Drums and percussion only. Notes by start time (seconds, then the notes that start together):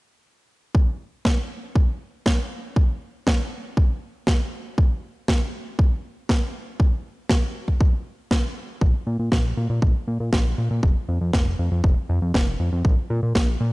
0.75 kick
1.25 kick, snare
1.75 kick
2.26 kick, snare
2.76 kick
3.27 kick, snare
3.77 kick
4.27 kick, snare
4.78 kick
5.28 kick, snare
5.79 kick
6.29 kick, snare
6.80 kick
7.29 kick, snare
7.68 kick
7.81 kick
8.31 kick, snare
8.81 kick
9.32 kick, snare
9.82 kick
10.33 kick, snare
10.83 kick
11.33 kick, snare
11.84 kick
12.34 kick, snare
12.85 kick
13.35 kick, snare